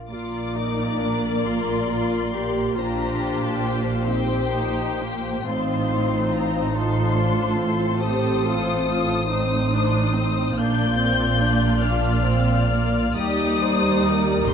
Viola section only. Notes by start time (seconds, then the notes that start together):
0.10 A#3 F4
0.56 D#4
0.99 D4
1.45 F4
1.90 F4
2.35 G4
2.78 D4 F4
4.08 C4 D#4
4.53 D#4
5.00 A#3
5.48 C4 D#4
6.76 D#4 F4
7.17 D4
7.59 C4
8.01 G4
8.45 F4
8.87 F4
9.29 C4 D#4
9.72 D4
10.14 C4
10.57 A#3 D4
10.97 C4
11.40 D4
11.83 D4
12.27 C4
12.73 A#3
13.16 G3 D#4
14.50 D#4